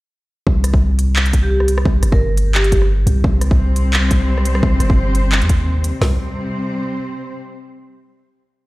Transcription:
0.47 808-style bass C2, kick
0.64 cross-stick, closed hi-hat
0.74 kick
0.99 closed hi-hat
1.16 clap
1.26 closed hi-hat
1.33 kick, closed hi-hat
1.43 vibraphone G4
1.51 vibraphone G4
1.60 cross-stick
1.68 closed hi-hat
1.78 cross-stick
1.85 808-style bass C2, kick
2.03 808-style bass G1, cross-stick, closed hi-hat
2.12 vibraphone A#4, kick
2.37 closed hi-hat
2.55 vibraphone G4, clap
2.64 vibraphone G4, closed hi-hat
2.72 kick, closed hi-hat
2.82 cross-stick
3.07 808-style bass C2, closed hi-hat
3.24 808-style bass C2, cello section C3, kick
3.34 cello section C4
3.39 cello section G3, cross-stick, closed hi-hat
3.49 cello section C5, kick
3.76 closed hi-hat
3.93 clap
4.11 kick, closed hi-hat
4.38 cross-stick
4.45 closed hi-hat
4.55 cross-stick
4.63 808-style bass C2, kick
4.80 808-style bass G1, cross-stick, closed hi-hat
4.90 kick
5.15 closed hi-hat
5.32 clap
5.42 808-style bass F2, closed hi-hat
5.49 808-style bass D#2, kick, closed hi-hat
5.84 closed hi-hat
6.01 808-style bass C2, cello section C3, snare, open hi-hat
6.08 cello section G3
6.13 cello section C4
6.17 cello section C5

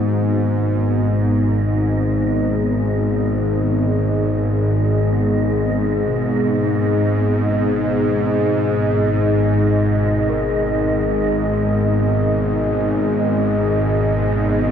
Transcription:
Already playing: synth drone G#1 G#2, singing bowl B3, analog synth pad B3 D#4 F#4 G#4, synth texture D#5
0.87 analog synth pad D#5
6.08 singing bowl B2
10.30 singing bowl A#4

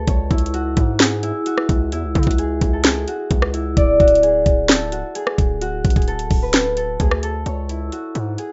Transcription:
Already playing: harp F#4 A4 B4
0.07 808-style bass C#2, harp C#5, kick, closed hi-hat
0.31 808-style bass C#2, harp E4, kick, closed hi-hat
0.38 closed hi-hat
0.46 closed hi-hat
0.54 harp F#4, closed hi-hat
0.77 808-style bass G#2, kick, closed hi-hat
1.00 harp G#4, snare, closed hi-hat
1.23 harp E4, closed hi-hat
1.46 harp F#4, closed hi-hat
1.58 cross-stick
1.69 808-style bass C#2, kick, closed hi-hat
1.92 808-style bass E2, harp E4, closed hi-hat
2.04 808-style bass C#2
2.15 808-style bass C#3, kick, closed hi-hat
2.23 808-style bass C#2, harp F#4, kick, closed hi-hat
2.31 closed hi-hat
2.38 harp G#4, closed hi-hat
2.61 808-style bass C#2, kick, closed hi-hat
2.73 harp A4
2.84 harp G#4, snare, closed hi-hat
3.08 harp F#4, closed hi-hat
3.31 808-style bass C#2, kick, closed hi-hat
3.42 cross-stick
3.54 harp E4, closed hi-hat
3.77 808-style bass D1, harp D5, kick, closed hi-hat
4.00 808-style bass D1, harp F#4, kick, closed hi-hat
4.08 closed hi-hat
4.15 closed hi-hat
4.23 harp G#4, closed hi-hat
4.46 808-style bass D1, kick, closed hi-hat
4.69 harp A4, snare, closed hi-hat
4.92 808-style bass C#1, harp F#4, closed hi-hat
5.15 harp G#4, closed hi-hat
5.27 cross-stick
5.38 808-style bass D1, kick, closed hi-hat
5.61 harp F#4, closed hi-hat
5.85 808-style bass A1, kick, closed hi-hat
5.90 closed hi-hat
5.96 808-style bass D1, harp G#4, kick, closed hi-hat
6.02 closed hi-hat
6.08 harp A4, closed hi-hat
6.19 closed hi-hat
6.30 808-style bass D1, kick, open hi-hat
6.42 harp B4
6.54 harp A4, snare, closed hi-hat
6.77 harp A4, closed hi-hat
7.00 808-style bass D2, harp G#4, kick, closed hi-hat
7.11 cross-stick
7.23 harp A4, closed hi-hat
7.46 808-style bass C#2, harp C#5, closed hi-hat
7.69 harp E4, closed hi-hat
7.92 harp F#4, closed hi-hat
8.15 808-style bass G#2, closed hi-hat
8.38 harp G#4, closed hi-hat

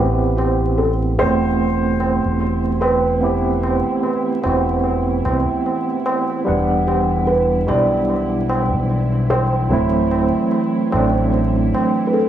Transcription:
Already playing: tine electric piano B3 C4
0.00 analog synth bass A1, synth drone E3 E4, tine electric piano E4 G4
0.37 felt piano G4, tabla na
0.60 tabla na
0.78 felt piano A4, tabla na
1.18 analog synth bass E1, tine electric piano A3 C4 E4 F#4, felt piano C5, tabla na
1.42 tabla na
1.59 tabla na
2.00 tabla na
2.23 analog synth bass E1, tabla na
2.40 tabla na
2.63 tabla na
2.81 felt piano B4, tabla na
3.04 tabla na
3.21 tine electric piano B3 C4 E4 G4, tabla na
3.63 tabla na
3.86 tabla na
4.03 tabla na
4.42 analog synth bass E1, tine electric piano B3 C4 E4 F#4, tabla na
4.67 tabla na
4.84 tabla na
5.25 analog synth bass C2, tabla na
5.49 tabla na
5.66 tabla na
5.89 tabla na
6.06 tabla na
6.30 tabla na
6.45 analog synth bass E1, tine electric piano G3 B3 D4 F#5, tabla na
6.87 felt piano G4, tabla na
7.09 tabla na
7.27 felt piano B4, tabla na
7.67 analog synth bass B1, tine electric piano B2 G3 D4 E4, felt piano D5, tabla na
7.91 tabla na
8.09 tabla na
8.49 tabla na
8.72 analog synth bass B1, tabla na
8.90 tabla na
9.12 tabla na
9.30 felt piano C5, tabla na
9.53 tabla na
9.70 analog synth bass D1, tine electric piano F#3 A3 C4 E4, tabla na
10.11 tabla na
10.35 tabla na
10.52 tabla na
10.91 analog synth bass A1, tine electric piano F#3 A3 C4 D4, tabla na
11.15 tabla na
11.33 tabla na
11.74 tabla na
11.96 tabla na
12.07 felt piano B4
12.13 felt piano A4, tabla na

